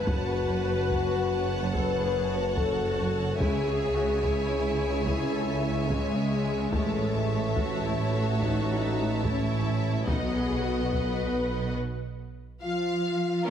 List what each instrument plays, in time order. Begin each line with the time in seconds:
Already playing: viola section B4
0.06 tuba F#1, double bass section F#1, cello section F#2, french horn section F#4, violin section C#5 F#5 A5, taiko
0.90 taiko
1.74 viola section A4, french horn section B4, taiko
2.01 viola section G#4
2.30 viola section F#4
2.56 french horn section A4, taiko
3.39 tuba C#2, double bass section C#2, cello section C#3, timpani C#3, viola section E4, french horn section G#4, violin section C#5 E5 G#5, taiko
3.68 viola section G#4
3.95 viola section F#4
4.23 viola section E4, taiko
5.05 french horn section E4, viola section G#4, taiko
5.33 viola section A4
5.61 viola section G#3
5.88 french horn section G#3, taiko
6.72 tuba A1, double bass section A1, cello section A2, french horn section A3, violin section C#5 E5 A5, taiko
7.55 viola section F#4, taiko
7.84 viola section E4
8.12 viola section F#4
8.41 french horn section D#4, taiko
9.24 french horn section C#4, viola section E4, taiko
10.06 tuba B1, double bass section B1, cello section B2, french horn section B3, viola section D#4, violin section B4 D#5 F#5, taiko
10.35 viola section G#4
10.62 viola section F#4
10.91 viola section B4, taiko
12.62 cello section F3, french horn section F4, violin section F5
13.47 string section A#4